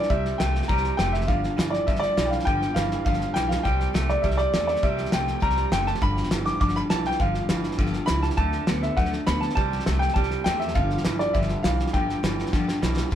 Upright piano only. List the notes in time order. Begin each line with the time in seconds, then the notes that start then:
Already playing: D5
0.10 E5
0.38 G5
0.68 A#5
0.97 G5
1.13 E5
1.27 F5
1.70 D5
1.87 E5
2.00 D5
2.26 F5 G5
2.45 G5
2.74 F5
3.05 F5
3.34 G5
3.49 F5
3.63 G5
4.10 D5
4.22 E5
4.38 D5
4.67 D5
4.83 E5
5.14 G5
5.42 A#5
5.72 G5
5.87 A5
6.02 B5
6.46 D6
6.61 D6
6.76 B5
6.90 A5
7.07 G5
7.20 F5
8.06 B5
8.23 A5
8.37 A5
8.83 E5
8.97 F#5
9.27 B5
9.41 A5
9.55 A5
9.99 G5
10.14 A5
10.44 G5
10.60 E5
10.74 F5
11.19 D5
11.33 E5
11.63 F5
11.93 G5